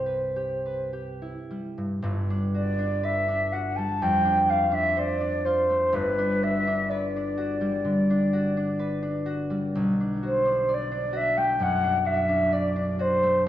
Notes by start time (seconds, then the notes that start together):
Already playing: C2 G2 G3 E4 G4 C5
0.06 B4
0.36 G4
0.66 B4
0.93 G4
1.22 E4
1.50 G3
1.78 G2
2.02 G1 G2
2.30 D4
2.54 F#4 D5
2.79 D4
3.03 B4 E5
3.28 D4
3.52 F#4 F#5
3.76 G3 A5
4.02 F2 G5
4.25 D4
4.49 F4 F5
4.71 D4 E5
4.97 C5 D5
5.21 D4
5.45 F4 C5
5.70 A3
5.93 G1 G2 B4
6.18 D4
6.43 F#4 E5
6.67 D4
6.89 B4 D5
7.16 D4
7.37 F#4
7.61 G3
7.85 D3
8.10 D4
8.33 F#4
8.57 D4
8.79 B4
9.02 D4
9.26 F#4
9.50 G3
9.75 B1
10.00 D4
10.22 F#4 C5
10.45 D4
10.69 D5
10.73 D5
10.91 D4
11.13 F#4 E5
11.37 A3 G5
11.60 F#2 F#5
11.84 D4
12.05 F#4 E5
12.29 D4
12.52 D5
12.76 D4
12.99 F#4 C5
13.23 A3